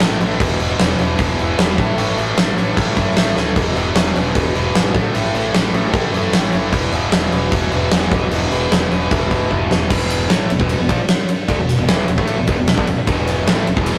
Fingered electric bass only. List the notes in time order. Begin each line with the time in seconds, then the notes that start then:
0.01 A1
0.20 A1
0.40 E1
0.60 E1
0.78 E1
0.98 E1
1.19 E1
1.39 E1
1.57 E1
1.78 A1
1.97 A1
2.17 A1
2.37 A1
2.57 A1
2.77 A1
2.97 F#2
3.16 A1
3.37 D2
3.56 E1
3.75 E1
3.95 E1
4.16 E1
4.35 E1
4.55 E1
4.74 G#1
4.94 A1
5.15 A1
5.34 A1
5.54 A1
5.73 A1
5.93 A1
6.12 F#2
6.32 A1
6.53 F#1
6.73 E1
6.92 E1
7.11 E1
7.32 E1
7.52 E1
7.72 E1
7.91 E1
8.11 E1
8.31 E1
8.52 E1
8.71 E1
8.91 E1
9.11 E1
9.31 D2
9.51 E1
9.71 E1
9.90 E1
10.30 A1
10.49 E1
10.60 E1
10.79 E1
10.89 A#1
11.49 D2
11.58 E1
11.77 E1
11.88 E1
12.08 E1
12.18 A1
12.38 E1
12.48 E1
12.57 E1
12.78 G1
12.88 E1
12.98 muted fingered electric bass stroke
13.08 E1
13.47 A1
13.67 E1
13.77 E1